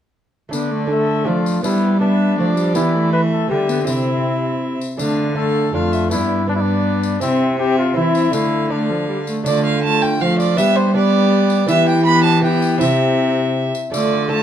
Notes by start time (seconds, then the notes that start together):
0.49 D3 A3 B3 D4, tambourine
0.53 D3 D5
0.72 A3
0.87 A3 D4 A4
0.92 E5
1.24 F3 A3 D4 F4 D5
1.46 tambourine
1.63 G3 B3 D4 E4 D5, tambourine
2.00 B3 D4 E5
2.38 F3 A3 D5
2.57 G3, tambourine
2.74 E3 B3 E4 G4, tambourine
2.95 A3
3.12 B4 E5
3.32 A4
3.48 D3 G3 B3 G4 E5
3.69 B3, tambourine
3.83 C3 C4 G4 E5, tambourine
3.87 C3 E4
4.81 tambourine
4.97 D3 A3 D4 F5, tambourine
5.35 A3 D4 A4 F5
5.73 F2 A3 D4 F4 F5
5.92 E5, tambourine
6.10 G2 B3 D4 E4 D5, tambourine
6.47 B3 D4 D5
6.55 E4
6.61 D4
7.03 tambourine
7.20 C3 C4 E4 E5, tambourine
7.59 C4 G4 E5
7.79 F4
7.94 E3 C4 E4 E5
8.15 tambourine
8.31 D3 A3 D4 E4 F5, tambourine
8.69 A3 D4 F5
8.90 F3
9.09 G3
9.27 A3, tambourine
9.44 D3 A3 D4 D5, tambourine
9.48 A3 F4
9.65 F5
9.84 A3 F4 A5
10.02 G5
10.21 F3 A3 F4 F5
10.39 D5, tambourine
10.56 G3 B3 D4 G4 E5, tambourine
10.76 C5
10.94 B3 D4 G4 D5
11.50 tambourine
11.66 E3 B3 E4 G4 E5, tambourine
11.89 G5
12.05 B3 G4 B5
12.24 A5
12.41 B3 E4 G4 G5
12.62 tambourine
12.78 C3 C4 E4 E5, tambourine
12.82 G4
13.75 tambourine
13.92 D3 A3 F4 A4 D5, tambourine
14.28 A3 A4 A5
14.33 F4